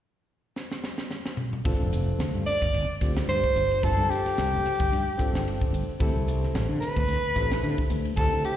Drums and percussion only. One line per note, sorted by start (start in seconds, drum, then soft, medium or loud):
0.56 snare medium
0.71 snare medium
0.84 snare medium
0.98 snare medium
1.11 snare medium
1.26 snare medium
1.37 mid tom medium
1.53 mid tom medium
1.65 kick loud
1.65 ride medium
1.93 hi-hat pedal medium
1.93 ride medium
2.20 snare loud
2.20 ride medium
2.47 snare soft
2.47 hi-hat pedal medium
2.47 ride medium
2.62 kick medium
2.62 snare soft
2.74 ride medium
3.01 kick medium
3.01 snare soft
3.01 hi-hat pedal medium
3.01 ride medium
3.16 snare loud
3.16 ride medium
3.29 ride medium
3.44 kick medium
3.56 hi-hat pedal medium
3.56 ride medium
3.72 ride medium
3.83 kick loud
3.83 ride medium
4.11 hi-hat pedal medium
4.11 ride medium
4.26 snare soft
4.26 ride medium
4.38 snare loud
4.38 ride medium
4.66 snare soft
4.66 hi-hat pedal medium
4.66 ride medium
4.80 kick medium
4.80 ride medium
4.93 ride medium
5.19 kick medium
5.19 hi-hat pedal medium
5.19 ride medium
5.35 snare loud
5.35 ride medium
5.48 ride medium
5.61 kick medium
5.74 hi-hat pedal medium
5.74 ride medium
6.00 kick loud
6.00 ride medium
6.28 hi-hat pedal medium
6.28 ride medium
6.43 snare soft
6.55 snare loud
6.55 ride medium
6.82 snare soft
6.82 hi-hat pedal medium
6.82 ride medium
6.96 kick medium
7.09 ride medium
7.36 kick medium
7.36 hi-hat pedal medium
7.36 ride medium
7.51 snare loud
7.51 ride medium
7.64 ride medium
7.78 kick medium
7.90 hi-hat pedal medium
7.90 ride medium
8.05 ride medium
8.17 kick loud
8.17 ride medium
8.44 hi-hat pedal medium
8.44 ride medium